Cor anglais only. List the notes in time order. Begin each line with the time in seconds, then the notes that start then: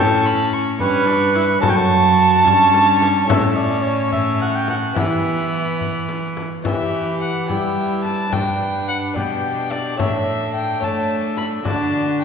Already playing: A5
0.80 B4
1.61 A5
1.70 G5
1.76 A5
3.29 E5
3.57 D5
3.83 C#5
4.13 E5
4.42 F#5
4.56 G5
4.70 F#5
4.99 E5
6.66 B4
8.34 B4
9.15 G4
9.98 A4
10.82 A4
11.66 F#4